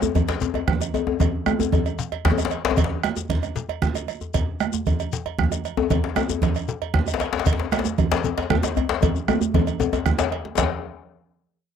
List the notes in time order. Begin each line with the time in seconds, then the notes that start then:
0.02 djembe slap, djembe tone, high conga, shekere
0.15 bombo low, cowbell, djembe tone, low conga, djembe bass, shekere
0.28 cowbell, djembe slap, shekere
0.41 djembe slap, djembe tone, shekere
0.54 cowbell, djembe tone
0.67 bombo rim, bombo low, djembe slap, high conga, djembe bass, low conga
0.81 bombo rim, cowbell, djembe slap, high conga, shekere
0.94 bombo rim, cowbell, djembe tone, shekere
1.07 djembe tone
1.20 bombo rim, bombo low, cowbell, djembe slap, djembe tone, low conga, djembe bass, shekere
1.46 bombo rim, cowbell, djembe tone, high conga, shekere
1.60 djembe slap, high conga, djembe tone, shekere
1.72 bombo low, cowbell, djembe tone, low conga, djembe bass, shekere
1.86 cowbell, shekere
1.99 djembe slap, shekere
2.12 cowbell, djembe tone
2.25 bombo rim, bombo low, djembe slap, high conga, low conga, djembe bass
2.32 djembe tone
2.38 bombo rim, cowbell, djembe slap, high conga, shekere
2.45 djembe slap
2.51 bombo rim, cowbell, shekere
2.65 djembe slap, djembe tone
2.71 djembe tone
2.77 bombo low, cowbell, djembe slap, high conga, low conga, djembe bass, shekere
2.84 djembe slap
2.91 bombo rim, djembe slap
3.03 bombo rim, cowbell, djembe slap, high conga, shekere
3.17 bombo rim, djembe slap, djembe tone, shekere
3.29 bombo low, cowbell, djembe slap, low conga, djembe bass, shekere
3.43 bombo rim, cowbell, high conga, shekere
3.56 djembe slap, high conga, shekere
3.69 cowbell, djembe tone
3.82 bombo rim, bombo low, djembe slap, high conga, low conga, shekere
3.95 cowbell, djembe slap, shekere
4.08 cowbell, high conga, shekere
4.21 djembe tone, shekere
4.34 bombo rim, bombo low, cowbell, djembe slap, low conga, djembe bass, shekere
4.60 bombo rim, cowbell, high conga, shekere
4.73 djembe slap, high conga, djembe tone, shekere
4.86 bombo low, cowbell, low conga, djembe bass, shekere
5.00 cowbell, shekere
5.13 djembe slap, shekere
5.26 cowbell, djembe tone
5.39 bombo rim, bombo low, djembe slap, high conga, low conga, djembe bass
5.52 bombo rim, cowbell, djembe slap, high conga, shekere
5.65 bombo rim, cowbell, shekere
5.77 djembe tone
5.90 bombo rim, bombo low, cowbell, djembe slap, djembe tone, djembe bass, low conga, shekere
6.04 djembe slap
6.16 bombo rim, cowbell, high conga, djembe tone, shekere
6.29 djembe slap, high conga, djembe tone, shekere
6.42 bombo low, cowbell, djembe slap, low conga, djembe bass, shekere
6.55 cowbell, shekere
6.68 djembe slap, shekere
6.82 cowbell, djembe tone
6.94 bombo rim, bombo low, djembe slap, high conga, low conga, djembe bass
7.07 bombo rim, cowbell, djembe slap, high conga, shekere
7.14 djembe slap
7.20 bombo rim, cowbell, djembe slap, shekere
7.33 djembe slap, djembe tone
7.39 djembe slap
7.46 bombo rim, bombo low, cowbell, djembe slap, low conga, djembe bass, shekere
7.53 djembe slap
7.59 djembe slap
7.72 bombo rim, cowbell, djembe slap, high conga, shekere
7.79 djembe slap
7.85 djembe slap, high conga, djembe tone, shekere
7.98 bombo low, cowbell, low conga, djembe bass, shekere
8.11 cowbell, djembe slap, shekere
8.24 djembe slap, djembe tone, shekere
8.38 cowbell, djembe slap, djembe tone
8.50 bombo rim, bombo low, djembe slap, high conga, djembe tone, low conga, djembe bass
8.63 bombo rim, cowbell, djembe slap, high conga, shekere
8.76 bombo rim, cowbell, djembe bass, shekere
8.89 djembe slap, djembe tone
9.02 bombo low, cowbell, djembe slap, djembe tone, low conga, djembe bass, shekere
9.15 djembe slap, high conga, shekere
9.28 bombo rim, cowbell, djembe tone, high conga, shekere
9.41 bombo rim, djembe slap, djembe tone, shekere
9.54 bombo rim, bombo low, cowbell, djembe tone, djembe bass, low conga
9.67 bombo rim, cowbell, high conga, shekere
9.80 bombo rim, djembe slap, djembe tone, shekere
9.93 bombo rim, cowbell, djembe tone, djembe bass, shekere
10.06 bombo rim, bombo low, high conga, low conga, djembe bass, shekere
10.19 cowbell, djembe slap, djembe bass, shekere
10.32 cowbell, djembe slap
10.45 djembe slap, high conga
10.57 bombo low, cowbell, djembe slap, djembe bass, low conga, shekere